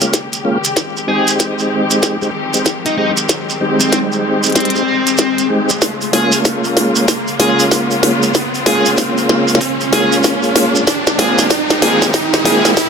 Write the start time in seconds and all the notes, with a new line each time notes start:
Already playing: C#3 G#3 A#3 G4, riser
0.01 G#3 A#3 C#4 F4, closed hi-hat, shekere
0.13 kick, snare, closed hi-hat, shekere
0.33 closed hi-hat, shekere
0.45 G#3 A#3 C#4 F4
0.64 closed hi-hat, shekere
0.76 D#3 C4, kick, snare, closed hi-hat, shekere
0.97 shekere
1.08 G#3 C4 D#4 G4 G#4
1.27 closed hi-hat, shekere
1.39 kick, snare, closed hi-hat, shekere
1.59 shekere
1.90 closed hi-hat, shekere
2.03 kick, snare, closed hi-hat, shekere
2.22 G#3 C4 D#4 G4, shekere
2.54 G#3 C4 D#4 G4, closed hi-hat, shekere
2.66 kick, snare, closed hi-hat, shekere
2.86 D#4, closed hi-hat, shekere
2.98 G#3 C4 D#4 G4
3.17 closed hi-hat, shekere
3.29 kick, snare, closed hi-hat, shekere
3.50 shekere
3.61 G#3 C4 D#4 G4
3.80 C4, closed hi-hat, shekere
3.92 kick, snare, closed hi-hat, shekere
4.12 shekere
4.43 closed hi-hat, shekere
4.47 closed hi-hat
4.50 closed hi-hat
4.52 kick, snare, closed hi-hat
4.56 C4, closed hi-hat, shekere
4.60 closed hi-hat
4.65 closed hi-hat
4.70 closed hi-hat
4.75 G#3 C4 D#4 G4, shekere
5.07 closed hi-hat, shekere
5.17 kick, snare, closed hi-hat, shekere
5.38 closed hi-hat, shekere
5.50 G#3 C4 D#4 G4
5.69 closed hi-hat, shekere
5.82 C#3 A#3 F4, kick, snare, open hi-hat, shekere
6.01 open hi-hat, shekere
6.13 G#3 A#3 C#4 F4 G#4, snare, open hi-hat
6.32 open hi-hat, shekere
6.45 kick, snare, open hi-hat, shekere
6.64 open hi-hat, shekere
6.77 snare, open hi-hat
6.95 open hi-hat, shekere
7.08 kick, snare, open hi-hat, shekere
7.27 open hi-hat, shekere
7.40 G#3 A#3 C#4 F4 G#4, snare, open hi-hat
7.59 open hi-hat, shekere
7.71 kick, snare, open hi-hat, shekere
7.91 open hi-hat, shekere
8.03 snare, open hi-hat
8.23 open hi-hat, shekere
8.34 kick, snare, open hi-hat, shekere
8.54 open hi-hat, shekere
8.66 G#3 A#3 C#4 F4 G#4, snare, open hi-hat
8.85 open hi-hat, shekere
8.97 kick, snare, open hi-hat, shekere
9.18 open hi-hat, shekere
9.29 snare
9.48 open hi-hat, shekere
9.55 snare
9.61 kick, open hi-hat, shekere
9.81 open hi-hat, shekere
9.92 G#3 A#3 C#4 F4 G#4, snare, open hi-hat
10.12 open hi-hat, shekere
10.23 kick, snare, open hi-hat, shekere
10.43 open hi-hat, shekere
10.56 snare, open hi-hat
10.75 shekere
10.87 D#3 G#3 C4 G4, kick, snare, open hi-hat, shekere
11.07 snare, shekere
11.19 G#3 A#3 C4 F4 G#4, snare, open hi-hat
11.38 snare, open hi-hat, shekere
11.50 kick, snare, open hi-hat, shekere
11.69 snare, open hi-hat, shekere
11.82 G#3 A#3 C4 F4 G#4, snare, open hi-hat
12.02 snare, open hi-hat, shekere
12.13 kick, snare, open hi-hat, shekere
12.33 snare, open hi-hat, shekere
12.45 G#3 A#3 C4 F4 G#4, snare, open hi-hat
12.65 snare, open hi-hat, shekere
12.76 kick, snare, open hi-hat, shekere